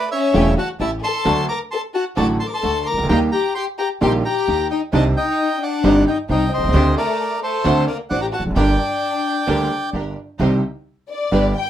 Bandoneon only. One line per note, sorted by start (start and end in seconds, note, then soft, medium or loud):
0.11 0.54 C#5 medium
0.11 0.54 E5 medium
0.58 0.69 F#5 medium
0.58 0.68 A5 medium
0.81 0.91 E5 medium
0.81 0.91 A5 medium
1.04 1.46 A5 medium
1.04 1.46 C6 loud
1.48 1.59 A#5 medium
1.48 1.59 D6 loud
1.71 1.81 A5 medium
1.71 1.81 C6 medium
1.94 2.05 F#5 medium
1.94 2.05 A5 medium
2.17 2.27 A5 medium
2.17 2.27 D6 medium
2.40 2.47 A5 medium
2.40 2.47 C6 medium
2.47 2.54 D6 medium
2.54 2.84 A5 medium
2.54 2.87 C6 medium
2.86 3.07 A#5 medium
2.86 3.08 D6 medium
3.09 3.20 G5 medium
3.09 3.19 A#5 medium
3.32 3.54 G5 medium
3.32 3.54 A#5 medium
3.55 3.66 G5 medium
3.55 3.65 C6 medium
3.78 3.89 G5 medium
3.78 3.89 A#5 medium
4.02 4.13 G5 medium
4.02 4.12 C6 medium
4.25 4.68 G5 medium
4.25 4.67 A#5 medium
4.70 4.81 D#5 medium
4.70 4.81 G5 medium
4.94 5.05 D#5 medium
4.94 5.04 A5 medium
5.17 5.59 D#5 medium
5.17 5.63 G5 medium
5.63 6.05 D5 medium
5.63 6.04 F#5 medium
6.07 6.18 D#5 medium
6.07 6.17 G5 medium
6.30 6.51 D#5 medium
6.30 6.53 G5 medium
6.54 6.95 C5 medium
6.54 6.95 D#5 medium
6.97 7.40 A#4 medium
6.97 7.39 D5 medium
7.43 7.85 A4 medium
7.43 7.85 C5 medium
7.87 7.98 A#4 medium
7.87 7.97 D5 medium
8.10 8.21 D5 medium
8.10 8.21 F#5 medium
8.21 8.27 G5 medium
8.21 8.26 A#5 medium
8.33 8.44 F#5 medium
8.33 8.43 A5 medium
8.56 9.90 D5 medium
8.56 9.90 G5 medium